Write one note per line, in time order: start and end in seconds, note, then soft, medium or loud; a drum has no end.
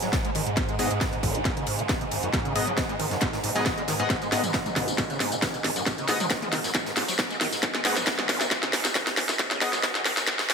0.00 10.54 G#2 medium
0.00 0.08 F#3 medium
0.00 snare soft
0.00 closed hi-hat medium
0.13 0.17 B3 medium
0.13 kick loud
0.13 snare loud
0.13 snare medium
0.13 closed hi-hat medium
0.13 ride medium
0.25 0.30 G#3 loud
0.25 closed hi-hat medium
0.35 0.41 D#3 medium
0.35 open hi-hat medium
0.35 ride medium
0.47 0.50 G#2 medium
0.47 closed hi-hat medium
0.57 0.61 G#2 loud
0.57 kick loud
0.57 snare medium
0.57 closed hi-hat medium
0.57 ride loud
0.69 0.74 G#3 medium
0.69 closed hi-hat medium
0.79 0.89 G#2 loud
0.79 0.89 B3 medium
0.79 0.89 G#4 medium
0.79 0.89 D#5 medium
0.79 snare soft
0.79 open hi-hat loud
0.79 ride medium
0.91 0.99 G#2 medium
0.91 closed hi-hat medium
0.91 ride soft
1.01 1.05 B3 medium
1.01 kick loud
1.01 snare medium
1.01 snare loud
1.01 closed hi-hat medium
1.01 ride loud
1.13 1.16 G#2 loud
1.13 closed hi-hat medium
1.23 1.36 G#1 loud
1.23 kick medium
1.23 open hi-hat loud
1.23 ride medium
1.35 1.41 F#2 medium
1.35 closed hi-hat medium
1.35 ride soft
1.45 1.52 G#2 medium
1.45 kick loud
1.45 snare medium
1.45 closed hi-hat medium
1.45 ride medium
1.57 1.65 C#3 medium
1.57 closed hi-hat medium
1.67 1.80 G#2 medium
1.67 open hi-hat loud
1.67 ride medium
1.79 1.82 C#3 medium
1.79 closed hi-hat medium
1.89 1.93 B3 medium
1.89 kick loud
1.89 snare loud
1.89 snare medium
1.89 closed hi-hat medium
1.89 ride medium
2.01 2.04 B2 medium
2.01 closed hi-hat medium
2.11 2.18 G#1 loud
2.11 open hi-hat medium
2.11 ride medium
2.23 2.29 F#2 loud
2.23 closed hi-hat medium
2.33 2.40 G#2 medium
2.33 kick loud
2.33 snare medium
2.33 closed hi-hat medium
2.33 ride medium
2.45 2.54 C#3 medium
2.45 closed hi-hat medium
2.55 2.59 G#2 medium
2.55 2.66 B3 medium
2.55 2.66 G#4 medium
2.55 2.66 D#5 medium
2.55 open hi-hat loud
2.55 ride medium
2.67 2.73 F#3 loud
2.67 closed hi-hat soft
2.77 2.81 B3 medium
2.77 kick loud
2.77 snare loud
2.77 snare medium
2.77 closed hi-hat medium
2.77 ride medium
2.89 2.95 G#3 loud
2.89 closed hi-hat soft
2.99 3.06 D#3 medium
2.99 open hi-hat loud
2.99 ride medium
3.11 3.17 F#2 medium
3.11 snare soft
3.11 closed hi-hat medium
3.21 3.28 G#2 medium
3.21 kick loud
3.21 snare medium
3.21 closed hi-hat medium
3.21 ride loud
3.33 3.39 G#2 medium
3.33 snare soft
3.33 closed hi-hat soft
3.43 3.50 G#2 loud
3.43 open hi-hat loud
3.43 ride medium
3.55 3.61 F#3 medium
3.55 3.64 B3 medium
3.55 3.64 G#4 medium
3.55 3.64 D#5 loud
3.55 snare soft
3.55 closed hi-hat medium
3.66 3.70 B3 medium
3.66 kick loud
3.66 snare loud
3.66 snare medium
3.66 closed hi-hat medium
3.66 ride medium
3.77 3.83 G#3 loud
3.77 closed hi-hat medium
3.88 3.94 D#3 medium
3.88 snare loud
3.88 open hi-hat medium
3.88 ride medium
4.00 4.03 G#2 medium
4.00 4.09 B3 medium
4.00 4.09 G#4 medium
4.00 4.09 D#5 loud
4.00 closed hi-hat medium
4.10 4.14 G#2 loud
4.10 kick loud
4.10 snare medium
4.10 closed hi-hat medium
4.10 ride medium
4.10 tambourine medium
4.22 4.27 G#3 medium
4.22 closed hi-hat medium
4.22 tambourine soft
4.32 4.42 G#2 loud
4.32 4.42 B3 medium
4.32 4.42 G#4 medium
4.32 4.42 D#5 medium
4.32 snare medium
4.32 snare soft
4.32 open hi-hat loud
4.32 ride medium
4.43 4.52 G#2 medium
4.43 closed hi-hat soft
4.43 mid tom medium
4.43 ride soft
4.43 tambourine medium
4.54 4.58 B3 medium
4.54 kick loud
4.54 snare loud
4.54 snare medium
4.54 closed hi-hat medium
4.54 ride medium
4.54 tambourine medium
4.66 4.69 G#2 loud
4.66 closed hi-hat soft
4.66 mid tom medium
4.66 tambourine soft
4.76 4.89 G#1 loud
4.76 kick medium
4.76 snare medium
4.76 open hi-hat medium
4.76 ride medium
4.88 4.94 F#2 medium
4.88 closed hi-hat soft
4.88 ride soft
4.88 tambourine medium
4.98 5.05 G#2 medium
4.98 kick loud
4.98 snare medium
4.98 closed hi-hat medium
4.98 ride medium
4.98 tambourine medium
5.10 5.18 C#3 medium
5.10 closed hi-hat medium
5.10 tambourine soft
5.20 5.33 G#2 medium
5.20 snare medium
5.20 open hi-hat loud
5.20 ride medium
5.32 5.35 C#3 medium
5.32 closed hi-hat medium
5.32 tambourine medium
5.42 5.46 B3 medium
5.42 kick loud
5.42 snare medium
5.42 snare loud
5.42 closed hi-hat medium
5.42 ride medium
5.42 tambourine medium
5.54 5.57 B2 medium
5.54 closed hi-hat soft
5.54 tambourine soft
5.64 5.71 G#1 loud
5.64 snare medium
5.64 open hi-hat loud
5.64 ride medium
5.76 5.82 F#2 loud
5.76 closed hi-hat soft
5.76 tambourine medium
5.86 5.93 G#2 medium
5.86 kick loud
5.86 snare medium
5.86 closed hi-hat medium
5.86 ride loud
5.86 tambourine medium
5.98 6.07 C#3 medium
5.98 closed hi-hat soft
5.98 tambourine soft
6.08 6.12 G#2 medium
6.08 6.19 B3 medium
6.08 6.19 G#4 medium
6.08 6.19 D#5 medium
6.08 snare medium
6.08 open hi-hat loud
6.08 ride medium
6.20 6.26 F#3 loud
6.20 closed hi-hat soft
6.20 mid tom medium
6.20 tambourine medium
6.30 6.34 B3 medium
6.30 kick loud
6.30 snare medium
6.30 snare loud
6.30 closed hi-hat medium
6.30 ride medium
6.30 tambourine medium
6.42 6.48 G#3 loud
6.42 closed hi-hat soft
6.42 mid tom medium
6.42 tambourine soft
6.52 6.59 D#3 medium
6.52 snare medium
6.52 open hi-hat medium
6.52 ride medium
6.64 6.70 F#2 loud
6.64 snare soft
6.64 closed hi-hat soft
6.64 tambourine medium
6.74 6.81 G#2 medium
6.74 kick loud
6.74 snare medium
6.74 closed hi-hat medium
6.74 ride medium
6.74 tambourine medium
6.86 6.92 G#2 medium
6.86 snare soft
6.86 closed hi-hat soft
6.86 tambourine soft
6.96 7.03 G#2 loud
6.96 snare medium
6.96 open hi-hat loud
6.96 ride medium
7.08 7.14 F#3 medium
7.08 snare soft
7.08 closed hi-hat soft
7.08 tambourine medium
7.18 7.23 B3 medium
7.18 kick loud
7.18 snare loud
7.18 snare medium
7.18 closed hi-hat medium
7.18 ride loud
7.30 7.36 G#3 loud
7.30 closed hi-hat soft
7.30 tambourine soft
7.41 7.47 D#3 medium
7.41 snare medium
7.41 open hi-hat medium
7.41 ride medium
7.52 7.56 G#2 medium
7.52 snare soft
7.52 closed hi-hat medium
7.52 tambourine medium
7.63 7.67 G#2 loud
7.63 kick loud
7.63 snare loud
7.63 closed hi-hat medium
7.63 ride loud
7.63 tambourine medium
7.74 7.80 G#3 medium
7.74 snare medium
7.74 closed hi-hat medium
7.74 tambourine soft
7.85 7.95 G#2 loud
7.85 7.95 B3 medium
7.85 7.95 G#4 medium
7.85 7.95 D#5 medium
7.85 snare loud
7.85 snare soft
7.85 open hi-hat loud
7.85 ride medium
7.97 8.05 G#2 medium
7.97 snare medium
7.97 closed hi-hat soft
7.97 mid tom medium
7.97 ride soft
7.97 tambourine medium
8.06 8.11 B3 medium
8.06 kick loud
8.06 snare loud
8.06 closed hi-hat medium
8.06 ride medium
8.06 tambourine medium
8.19 8.22 G#2 loud
8.19 snare medium
8.19 closed hi-hat soft
8.19 mid tom medium
8.19 tambourine soft
8.29 8.42 G#1 loud
8.29 kick medium
8.29 snare loud
8.29 open hi-hat medium
8.29 ride medium
8.41 8.46 F#2 medium
8.41 snare medium
8.41 closed hi-hat medium
8.41 ride soft
8.41 tambourine medium
8.51 8.58 G#2 medium
8.51 kick loud
8.51 snare loud
8.51 closed hi-hat medium
8.51 ride medium
8.51 tambourine medium
8.63 8.71 C#3 medium
8.63 snare medium
8.63 closed hi-hat medium
8.63 tambourine soft
8.73 8.86 G#2 medium
8.73 snare loud
8.73 open hi-hat loud
8.73 ride medium
8.84 8.88 C#3 medium
8.84 snare medium
8.84 snare loud
8.84 closed hi-hat medium
8.84 ride medium
8.84 tambourine medium
8.94 8.99 B3 medium
8.94 kick loud
8.94 snare loud
8.94 closed hi-hat medium
8.94 ride medium
8.94 tambourine medium
9.07 9.10 B2 medium
9.07 snare medium
9.07 snare loud
9.07 closed hi-hat soft
9.07 ride medium
9.07 tambourine soft
9.17 9.24 G#1 loud
9.17 snare loud
9.17 open hi-hat medium
9.17 ride medium
9.29 9.35 F#2 loud
9.29 snare medium
9.29 closed hi-hat medium
9.29 tambourine medium
9.39 9.46 G#2 medium
9.39 kick loud
9.39 snare loud
9.39 closed hi-hat medium
9.39 ride medium
9.51 9.60 C#3 medium
9.51 snare loud
9.51 closed hi-hat medium
9.51 tambourine soft
9.61 9.65 G#2 medium
9.61 9.71 B3 medium
9.61 9.71 G#4 medium
9.61 9.71 D#5 medium
9.61 kick medium
9.61 snare loud
9.61 open hi-hat loud
9.61 ride medium
9.73 9.79 F#3 loud
9.73 snare medium
9.73 closed hi-hat soft
9.73 mid tom medium
9.73 tambourine medium
9.83 9.87 B3 medium
9.83 kick loud
9.83 snare loud
9.83 closed hi-hat medium
9.83 ride medium
9.83 tambourine medium
9.95 10.01 G#3 loud
9.95 snare medium
9.95 closed hi-hat medium
9.95 mid tom medium
9.95 tambourine soft
10.05 10.12 D#3 medium
10.05 snare loud
10.05 open hi-hat medium
10.05 ride medium
10.17 10.23 F#2 loud
10.17 snare medium
10.17 snare soft
10.17 closed hi-hat medium
10.17 tambourine medium
10.27 10.34 G#2 medium
10.27 kick loud
10.27 snare loud
10.27 closed hi-hat medium
10.27 ride medium
10.27 tambourine medium
10.39 10.45 G#2 medium
10.39 snare medium
10.39 snare soft
10.39 closed hi-hat medium
10.39 tambourine soft
10.49 10.54 F#2 medium
10.49 snare loud
10.49 mid tom medium
10.49 open hi-hat loud
10.49 ride medium